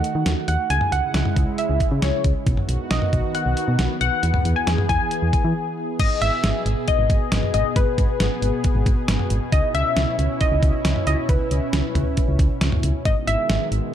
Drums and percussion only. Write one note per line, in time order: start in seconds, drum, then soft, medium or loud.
0.04 closed hi-hat medium
0.26 snare loud
0.26 closed hi-hat medium
0.48 closed hi-hat medium
0.70 closed hi-hat medium
0.81 mid tom medium
0.92 closed hi-hat medium
1.14 snare loud
1.14 closed hi-hat medium
1.25 mid tom medium
1.37 kick medium
1.37 closed hi-hat medium
1.58 closed hi-hat medium
1.80 kick medium
1.80 closed hi-hat medium
2.02 snare loud
2.02 closed hi-hat medium
2.24 kick medium
2.24 closed hi-hat medium
2.47 kick loud
2.47 closed hi-hat medium
2.57 mid tom medium
2.69 closed hi-hat medium
2.91 snare loud
2.91 closed hi-hat medium
3.02 mid tom medium
3.13 kick medium
3.13 closed hi-hat medium
3.35 closed hi-hat medium
3.57 closed hi-hat medium
3.79 snare loud
3.79 closed hi-hat medium
4.01 closed hi-hat medium
4.23 closed hi-hat medium
4.34 mid tom medium
4.45 closed hi-hat medium
4.67 snare loud
4.67 closed hi-hat medium
4.78 mid tom medium
4.89 kick medium
4.89 closed hi-hat medium
5.11 closed hi-hat medium
5.33 kick loud
5.33 closed hi-hat medium
5.99 kick loud
5.99 closed hi-hat medium
5.99 crash loud
6.22 closed hi-hat medium
6.44 snare loud
6.44 closed hi-hat medium
6.66 closed hi-hat medium
6.88 kick medium
6.88 closed hi-hat medium
7.10 kick loud
7.10 closed hi-hat medium
7.32 snare loud
7.32 closed hi-hat medium
7.43 mid tom medium
7.54 closed hi-hat medium
7.76 kick loud
7.76 closed hi-hat medium
7.98 kick loud
7.98 closed hi-hat medium
8.20 snare loud
8.20 closed hi-hat medium
8.42 closed hi-hat medium
8.64 kick medium
8.64 closed hi-hat medium
8.86 kick medium
8.86 closed hi-hat medium
9.08 snare loud
9.08 closed hi-hat medium
9.20 mid tom medium
9.30 closed hi-hat medium
9.52 kick loud
9.52 closed hi-hat medium
9.75 closed hi-hat medium
9.97 snare loud
9.97 closed hi-hat medium
10.19 closed hi-hat medium
10.41 kick medium
10.41 closed hi-hat medium
10.63 kick loud
10.63 closed hi-hat medium
10.85 snare loud
10.85 closed hi-hat medium
10.96 mid tom medium
11.07 closed hi-hat medium
11.29 kick loud
11.29 closed hi-hat medium
11.51 closed hi-hat medium
11.73 snare loud
11.73 closed hi-hat medium
11.95 closed hi-hat medium
11.95 mid tom loud
12.17 kick medium
12.17 closed hi-hat medium
12.39 kick loud
12.39 closed hi-hat medium
12.61 snare loud
12.61 closed hi-hat medium
12.72 mid tom medium
12.83 closed hi-hat medium
13.05 kick loud
13.05 closed hi-hat medium
13.28 closed hi-hat medium
13.50 snare loud
13.50 closed hi-hat medium
13.72 closed hi-hat medium